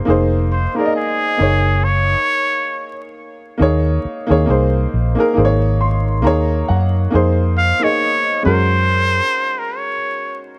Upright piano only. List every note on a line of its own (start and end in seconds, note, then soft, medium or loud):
0.05 0.62 A#3 medium
0.05 0.63 D#4 medium
0.05 0.64 G#4 medium
0.10 0.64 C5 loud
0.75 1.36 A#3 medium
0.75 1.37 D#4 medium
0.75 1.39 G#4 medium
0.79 0.83 D5 medium
0.86 1.43 D#5 medium
1.37 2.87 A#3 medium
1.37 2.88 D#4 medium
1.37 2.88 G#4 medium
1.42 2.89 C#5 medium
3.58 4.15 A#3 medium
3.58 4.16 D#4 medium
3.58 4.16 G#4 medium
3.62 4.17 C#5 loud
4.27 4.44 A#3 loud
4.27 4.46 D#4 medium
4.27 4.47 G#4 medium
4.31 4.48 C#5 loud
4.46 5.03 A#3 medium
4.46 5.04 D#4 medium
4.46 5.04 G#4 medium
4.50 5.05 C5 loud
5.15 5.32 A#3 medium
5.15 5.33 D#4 medium
5.15 5.35 G#4 medium
5.20 5.37 A#4 loud
5.33 6.10 A#3 medium
5.33 6.11 D#4 medium
5.33 6.12 G#4 medium
5.38 5.44 C5 medium
5.45 6.16 C#5 loud
5.81 6.21 C6 medium
6.22 6.98 A#3 loud
6.22 6.99 D#4 medium
6.22 7.00 G#4 medium
6.22 6.65 A#5 medium
6.27 7.01 C#5 loud
6.68 7.09 F#5 medium
7.10 7.68 A#3 medium
7.10 7.68 D#4 medium
7.10 7.69 G#4 medium
7.15 7.70 C5 loud
7.79 8.43 A#3 medium
7.79 8.44 D#4 medium
7.79 8.44 G#4 medium
7.84 8.45 D#5 medium
8.43 9.93 G#3 medium
8.43 9.93 C#4 medium
8.43 9.94 F#4 medium
8.47 9.95 A#4 medium